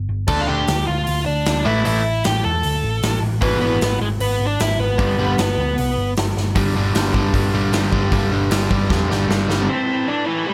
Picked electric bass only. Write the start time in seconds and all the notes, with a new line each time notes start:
0.09 G1
0.28 D2
0.49 D2
0.69 D2
0.89 D2
1.08 D2
1.27 D2
1.47 D2
1.66 A1
1.86 A1
2.26 A1
2.45 E2
2.65 D2
2.83 A1
3.03 A1
3.22 A1
3.42 G#1
3.61 G#1
3.81 G#1
4.00 G#1
4.20 G#1
4.40 G#1
4.60 G#1
4.79 G#1
4.99 G1
5.38 G1
5.57 D2
5.78 C2
5.97 G1
6.17 G1
6.36 G1
6.56 G1
6.75 G1
6.94 G1
7.14 G1
7.34 G1
7.54 G1
7.73 G1
7.93 G1
8.12 G1
8.32 G1
8.52 G1
8.71 G1
8.91 F2
9.10 G1
9.29 G1
9.48 G1